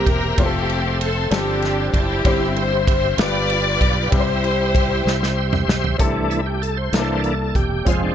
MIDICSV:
0, 0, Header, 1, 6, 480
1, 0, Start_track
1, 0, Key_signature, 0, "major"
1, 0, Tempo, 623701
1, 295, Time_signature, 6, 3, 24, 8
1, 6271, End_track
2, 0, Start_track
2, 0, Title_t, "Tonewheel organ"
2, 0, Program_c, 0, 16
2, 0, Note_on_c, 0, 67, 64
2, 0, Note_on_c, 0, 72, 65
2, 0, Note_on_c, 0, 76, 60
2, 0, Note_on_c, 0, 82, 68
2, 278, Note_off_c, 0, 76, 0
2, 288, Note_off_c, 0, 67, 0
2, 289, Note_off_c, 0, 82, 0
2, 294, Note_on_c, 0, 84, 75
2, 295, Note_on_c, 0, 69, 64
2, 1006, Note_off_c, 0, 84, 0
2, 1007, Note_off_c, 0, 69, 0
2, 1015, Note_on_c, 0, 81, 73
2, 1019, Note_on_c, 0, 67, 67
2, 1703, Note_off_c, 0, 72, 0
2, 1725, Note_off_c, 0, 67, 0
2, 1727, Note_off_c, 0, 81, 0
2, 1732, Note_on_c, 0, 84, 73
2, 1733, Note_on_c, 0, 72, 66
2, 1734, Note_on_c, 0, 67, 67
2, 1735, Note_on_c, 0, 76, 64
2, 2438, Note_off_c, 0, 67, 0
2, 2443, Note_on_c, 0, 83, 78
2, 2445, Note_off_c, 0, 84, 0
2, 2446, Note_off_c, 0, 72, 0
2, 2446, Note_off_c, 0, 76, 0
2, 2446, Note_on_c, 0, 74, 64
2, 2446, Note_on_c, 0, 77, 70
2, 2447, Note_on_c, 0, 67, 64
2, 3161, Note_off_c, 0, 83, 0
2, 3162, Note_off_c, 0, 74, 0
2, 3162, Note_off_c, 0, 77, 0
2, 3163, Note_on_c, 0, 72, 66
2, 3164, Note_on_c, 0, 84, 75
2, 3165, Note_on_c, 0, 76, 66
2, 4588, Note_off_c, 0, 67, 0
2, 4593, Note_off_c, 0, 72, 0
2, 4594, Note_off_c, 0, 84, 0
2, 4595, Note_off_c, 0, 76, 0
2, 4604, Note_on_c, 0, 52, 42
2, 4611, Note_on_c, 0, 57, 45
2, 4616, Note_on_c, 0, 62, 45
2, 4848, Note_on_c, 0, 64, 70
2, 4928, Note_off_c, 0, 52, 0
2, 4931, Note_off_c, 0, 57, 0
2, 4934, Note_off_c, 0, 62, 0
2, 4971, Note_on_c, 0, 67, 70
2, 4974, Note_off_c, 0, 64, 0
2, 5094, Note_on_c, 0, 69, 85
2, 5096, Note_off_c, 0, 67, 0
2, 5212, Note_on_c, 0, 72, 92
2, 5217, Note_off_c, 0, 69, 0
2, 5332, Note_on_c, 0, 52, 46
2, 5334, Note_on_c, 0, 69, 45
2, 5337, Note_on_c, 0, 58, 44
2, 5337, Note_on_c, 0, 62, 51
2, 5548, Note_off_c, 0, 72, 0
2, 5561, Note_off_c, 0, 69, 0
2, 5570, Note_on_c, 0, 69, 72
2, 5652, Note_off_c, 0, 52, 0
2, 5655, Note_off_c, 0, 58, 0
2, 5655, Note_off_c, 0, 62, 0
2, 5812, Note_on_c, 0, 67, 80
2, 5819, Note_off_c, 0, 69, 0
2, 6052, Note_on_c, 0, 53, 49
2, 6054, Note_on_c, 0, 56, 41
2, 6059, Note_on_c, 0, 65, 77
2, 6061, Note_off_c, 0, 67, 0
2, 6061, Note_on_c, 0, 60, 47
2, 6180, Note_off_c, 0, 65, 0
2, 6182, Note_on_c, 0, 62, 60
2, 6271, Note_off_c, 0, 53, 0
2, 6271, Note_off_c, 0, 56, 0
2, 6271, Note_off_c, 0, 60, 0
2, 6271, Note_off_c, 0, 62, 0
2, 6271, End_track
3, 0, Start_track
3, 0, Title_t, "String section"
3, 0, Program_c, 1, 48
3, 0, Note_on_c, 1, 67, 74
3, 68, Note_on_c, 1, 70, 90
3, 272, Note_off_c, 1, 67, 0
3, 285, Note_off_c, 1, 70, 0
3, 303, Note_on_c, 1, 67, 93
3, 310, Note_on_c, 1, 60, 63
3, 778, Note_off_c, 1, 67, 0
3, 781, Note_on_c, 1, 69, 93
3, 991, Note_off_c, 1, 60, 0
3, 1001, Note_off_c, 1, 69, 0
3, 1029, Note_on_c, 1, 67, 81
3, 1031, Note_on_c, 1, 62, 62
3, 1036, Note_on_c, 1, 60, 57
3, 1470, Note_off_c, 1, 67, 0
3, 1503, Note_off_c, 1, 60, 0
3, 1508, Note_on_c, 1, 67, 88
3, 1512, Note_on_c, 1, 60, 61
3, 1512, Note_on_c, 1, 64, 62
3, 1711, Note_off_c, 1, 62, 0
3, 1950, Note_off_c, 1, 67, 0
3, 1980, Note_on_c, 1, 72, 86
3, 2191, Note_off_c, 1, 64, 0
3, 2192, Note_off_c, 1, 60, 0
3, 2206, Note_off_c, 1, 72, 0
3, 2215, Note_on_c, 1, 72, 92
3, 2437, Note_off_c, 1, 72, 0
3, 2465, Note_on_c, 1, 74, 103
3, 2470, Note_on_c, 1, 71, 76
3, 2471, Note_on_c, 1, 65, 73
3, 3148, Note_off_c, 1, 74, 0
3, 3150, Note_off_c, 1, 71, 0
3, 3151, Note_off_c, 1, 65, 0
3, 3184, Note_on_c, 1, 72, 101
3, 3190, Note_on_c, 1, 67, 69
3, 3192, Note_on_c, 1, 64, 68
3, 4350, Note_off_c, 1, 67, 0
3, 4352, Note_off_c, 1, 64, 0
3, 4378, Note_off_c, 1, 72, 0
3, 6271, End_track
4, 0, Start_track
4, 0, Title_t, "Grand piano"
4, 0, Program_c, 2, 0
4, 0, Control_c, 2, 64, 127
4, 0, Note_on_c, 2, 48, 65
4, 0, Note_on_c, 2, 58, 58
4, 0, Note_on_c, 2, 60, 58
4, 0, Note_on_c, 2, 64, 56
4, 0, Note_on_c, 2, 67, 52
4, 0, Note_on_c, 2, 70, 66
4, 267, Note_off_c, 2, 48, 0
4, 284, Note_off_c, 2, 60, 0
4, 291, Note_off_c, 2, 67, 0
4, 294, Note_on_c, 2, 57, 65
4, 295, Note_off_c, 2, 58, 0
4, 296, Note_on_c, 2, 60, 52
4, 298, Note_off_c, 2, 64, 0
4, 299, Note_on_c, 2, 65, 61
4, 303, Note_on_c, 2, 67, 50
4, 305, Control_c, 2, 64, 0
4, 306, Note_on_c, 2, 72, 62
4, 325, Note_off_c, 2, 70, 0
4, 349, Note_off_c, 2, 67, 0
4, 350, Note_on_c, 2, 69, 63
4, 455, Control_c, 2, 64, 127
4, 994, Note_off_c, 2, 60, 0
4, 1005, Note_on_c, 2, 60, 60
4, 1006, Note_off_c, 2, 69, 0
4, 1010, Note_on_c, 2, 62, 56
4, 1012, Note_on_c, 2, 55, 59
4, 1014, Note_off_c, 2, 57, 0
4, 1016, Note_off_c, 2, 65, 0
4, 1016, Note_on_c, 2, 53, 59
4, 1016, Note_on_c, 2, 67, 56
4, 1018, Note_on_c, 2, 69, 70
4, 1020, Note_off_c, 2, 72, 0
4, 1024, Control_c, 2, 64, 0
4, 1156, Control_c, 2, 64, 127
4, 1702, Note_off_c, 2, 55, 0
4, 1722, Note_off_c, 2, 60, 0
4, 1728, Note_off_c, 2, 67, 0
4, 1731, Note_off_c, 2, 62, 0
4, 1732, Note_on_c, 2, 55, 59
4, 1733, Note_on_c, 2, 60, 58
4, 1734, Note_off_c, 2, 53, 0
4, 1734, Note_on_c, 2, 43, 65
4, 1735, Note_off_c, 2, 69, 0
4, 1737, Note_on_c, 2, 64, 53
4, 1739, Note_on_c, 2, 67, 53
4, 1742, Note_on_c, 2, 72, 72
4, 1745, Control_c, 2, 64, 0
4, 1895, Control_c, 2, 64, 127
4, 2422, Note_off_c, 2, 43, 0
4, 2446, Note_off_c, 2, 67, 0
4, 2450, Note_on_c, 2, 59, 65
4, 2450, Note_on_c, 2, 62, 55
4, 2452, Note_off_c, 2, 55, 0
4, 2453, Note_off_c, 2, 60, 0
4, 2453, Note_on_c, 2, 43, 62
4, 2454, Note_on_c, 2, 65, 55
4, 2455, Note_off_c, 2, 64, 0
4, 2457, Note_off_c, 2, 72, 0
4, 2458, Note_on_c, 2, 67, 58
4, 2461, Note_on_c, 2, 71, 70
4, 2464, Control_c, 2, 64, 0
4, 2604, Control_c, 2, 64, 127
4, 3142, Note_off_c, 2, 43, 0
4, 3158, Note_on_c, 2, 55, 65
4, 3165, Note_on_c, 2, 60, 60
4, 3167, Note_off_c, 2, 67, 0
4, 3171, Note_off_c, 2, 59, 0
4, 3171, Note_off_c, 2, 62, 0
4, 3171, Note_on_c, 2, 48, 62
4, 3172, Note_off_c, 2, 71, 0
4, 3172, Note_on_c, 2, 64, 57
4, 3173, Note_off_c, 2, 65, 0
4, 3179, Note_on_c, 2, 67, 59
4, 3183, Control_c, 2, 64, 0
4, 3184, Note_on_c, 2, 71, 52
4, 3228, Note_off_c, 2, 71, 0
4, 3233, Note_on_c, 2, 72, 75
4, 3326, Control_c, 2, 64, 127
4, 3861, Note_off_c, 2, 48, 0
4, 4576, Note_off_c, 2, 55, 0
4, 4580, Note_off_c, 2, 60, 0
4, 4584, Note_off_c, 2, 64, 0
4, 4587, Note_off_c, 2, 67, 0
4, 4605, Note_on_c, 2, 60, 65
4, 4610, Note_on_c, 2, 64, 54
4, 4614, Note_on_c, 2, 48, 58
4, 4614, Note_on_c, 2, 67, 58
4, 4615, Note_off_c, 2, 72, 0
4, 4619, Note_on_c, 2, 69, 75
4, 4622, Control_c, 2, 64, 0
4, 4770, Control_c, 2, 64, 127
4, 5303, Note_off_c, 2, 48, 0
4, 5329, Note_off_c, 2, 60, 0
4, 5330, Note_off_c, 2, 64, 0
4, 5334, Note_off_c, 2, 67, 0
4, 5334, Note_on_c, 2, 58, 47
4, 5336, Note_off_c, 2, 69, 0
4, 5337, Note_on_c, 2, 62, 51
4, 5341, Note_on_c, 2, 48, 52
4, 5341, Note_on_c, 2, 64, 46
4, 5344, Control_c, 2, 64, 0
4, 5346, Note_on_c, 2, 67, 45
4, 5389, Note_off_c, 2, 67, 0
4, 5394, Note_on_c, 2, 69, 64
4, 5472, Control_c, 2, 64, 127
4, 6027, Note_off_c, 2, 48, 0
4, 6042, Note_on_c, 2, 60, 56
4, 6052, Note_on_c, 2, 65, 50
4, 6054, Note_off_c, 2, 58, 0
4, 6056, Note_off_c, 2, 62, 0
4, 6057, Note_on_c, 2, 68, 53
4, 6058, Note_off_c, 2, 64, 0
4, 6065, Control_c, 2, 64, 0
4, 6067, Note_on_c, 2, 72, 58
4, 6084, Note_off_c, 2, 69, 0
4, 6192, Control_c, 2, 64, 127
4, 6271, Note_off_c, 2, 60, 0
4, 6271, Note_off_c, 2, 65, 0
4, 6271, Note_off_c, 2, 68, 0
4, 6271, Note_off_c, 2, 72, 0
4, 6271, End_track
5, 0, Start_track
5, 0, Title_t, "Fingered electric bass"
5, 0, Program_c, 3, 33
5, 50, Note_on_c, 3, 28, 79
5, 273, Note_off_c, 3, 28, 0
5, 292, Note_on_c, 3, 29, 99
5, 982, Note_off_c, 3, 29, 0
5, 1010, Note_on_c, 3, 31, 109
5, 1461, Note_off_c, 3, 31, 0
5, 1488, Note_on_c, 3, 30, 83
5, 1711, Note_off_c, 3, 30, 0
5, 1729, Note_on_c, 3, 31, 106
5, 2420, Note_off_c, 3, 31, 0
5, 2448, Note_on_c, 3, 31, 114
5, 2899, Note_off_c, 3, 31, 0
5, 2929, Note_on_c, 3, 35, 92
5, 3152, Note_off_c, 3, 35, 0
5, 3173, Note_on_c, 3, 36, 100
5, 3862, Note_off_c, 3, 36, 0
5, 3890, Note_on_c, 3, 36, 94
5, 4341, Note_off_c, 3, 36, 0
5, 4372, Note_on_c, 3, 35, 85
5, 4593, Note_off_c, 3, 35, 0
5, 4613, Note_on_c, 3, 36, 76
5, 5303, Note_off_c, 3, 36, 0
5, 5330, Note_on_c, 3, 36, 95
5, 5781, Note_off_c, 3, 36, 0
5, 5810, Note_on_c, 3, 28, 77
5, 6033, Note_off_c, 3, 28, 0
5, 6051, Note_on_c, 3, 29, 90
5, 6271, Note_off_c, 3, 29, 0
5, 6271, End_track
6, 0, Start_track
6, 0, Title_t, "Drums"
6, 50, Note_on_c, 9, 36, 92
6, 52, Note_on_c, 9, 51, 48
6, 127, Note_off_c, 9, 36, 0
6, 129, Note_off_c, 9, 51, 0
6, 291, Note_on_c, 9, 51, 69
6, 292, Note_on_c, 9, 36, 106
6, 368, Note_off_c, 9, 51, 0
6, 369, Note_off_c, 9, 36, 0
6, 535, Note_on_c, 9, 51, 41
6, 612, Note_off_c, 9, 51, 0
6, 777, Note_on_c, 9, 51, 62
6, 854, Note_off_c, 9, 51, 0
6, 1010, Note_on_c, 9, 51, 64
6, 1019, Note_on_c, 9, 38, 117
6, 1087, Note_off_c, 9, 51, 0
6, 1096, Note_off_c, 9, 38, 0
6, 1249, Note_on_c, 9, 51, 39
6, 1262, Note_on_c, 9, 38, 38
6, 1326, Note_off_c, 9, 51, 0
6, 1339, Note_off_c, 9, 38, 0
6, 1490, Note_on_c, 9, 36, 77
6, 1493, Note_on_c, 9, 51, 50
6, 1567, Note_off_c, 9, 36, 0
6, 1570, Note_off_c, 9, 51, 0
6, 1731, Note_on_c, 9, 36, 99
6, 1731, Note_on_c, 9, 51, 67
6, 1808, Note_off_c, 9, 36, 0
6, 1808, Note_off_c, 9, 51, 0
6, 1973, Note_on_c, 9, 51, 40
6, 2050, Note_off_c, 9, 51, 0
6, 2212, Note_on_c, 9, 36, 97
6, 2217, Note_on_c, 9, 51, 62
6, 2289, Note_off_c, 9, 36, 0
6, 2294, Note_off_c, 9, 51, 0
6, 2448, Note_on_c, 9, 51, 67
6, 2457, Note_on_c, 9, 38, 118
6, 2525, Note_off_c, 9, 51, 0
6, 2534, Note_off_c, 9, 38, 0
6, 2692, Note_on_c, 9, 51, 42
6, 2769, Note_off_c, 9, 51, 0
6, 2932, Note_on_c, 9, 36, 83
6, 2937, Note_on_c, 9, 51, 47
6, 3009, Note_off_c, 9, 36, 0
6, 3014, Note_off_c, 9, 51, 0
6, 3172, Note_on_c, 9, 51, 75
6, 3173, Note_on_c, 9, 36, 116
6, 3249, Note_off_c, 9, 51, 0
6, 3250, Note_off_c, 9, 36, 0
6, 3417, Note_on_c, 9, 51, 37
6, 3494, Note_off_c, 9, 51, 0
6, 3653, Note_on_c, 9, 36, 95
6, 3659, Note_on_c, 9, 51, 59
6, 3730, Note_off_c, 9, 36, 0
6, 3736, Note_off_c, 9, 51, 0
6, 3904, Note_on_c, 9, 38, 56
6, 3981, Note_off_c, 9, 38, 0
6, 4025, Note_on_c, 9, 38, 51
6, 4102, Note_off_c, 9, 38, 0
6, 4254, Note_on_c, 9, 45, 79
6, 4331, Note_off_c, 9, 45, 0
6, 4382, Note_on_c, 9, 38, 96
6, 4459, Note_off_c, 9, 38, 0
6, 4495, Note_on_c, 9, 43, 78
6, 4572, Note_off_c, 9, 43, 0
6, 4613, Note_on_c, 9, 36, 92
6, 4613, Note_on_c, 9, 42, 81
6, 4690, Note_off_c, 9, 36, 0
6, 4690, Note_off_c, 9, 42, 0
6, 4855, Note_on_c, 9, 42, 44
6, 4932, Note_off_c, 9, 42, 0
6, 5101, Note_on_c, 9, 42, 46
6, 5178, Note_off_c, 9, 42, 0
6, 5333, Note_on_c, 9, 42, 69
6, 5342, Note_on_c, 9, 38, 94
6, 5410, Note_off_c, 9, 42, 0
6, 5419, Note_off_c, 9, 38, 0
6, 5571, Note_on_c, 9, 42, 42
6, 5648, Note_off_c, 9, 42, 0
6, 5811, Note_on_c, 9, 36, 74
6, 5815, Note_on_c, 9, 42, 38
6, 5888, Note_off_c, 9, 36, 0
6, 5892, Note_off_c, 9, 42, 0
6, 6052, Note_on_c, 9, 42, 79
6, 6053, Note_on_c, 9, 36, 94
6, 6129, Note_off_c, 9, 42, 0
6, 6130, Note_off_c, 9, 36, 0
6, 6271, End_track
0, 0, End_of_file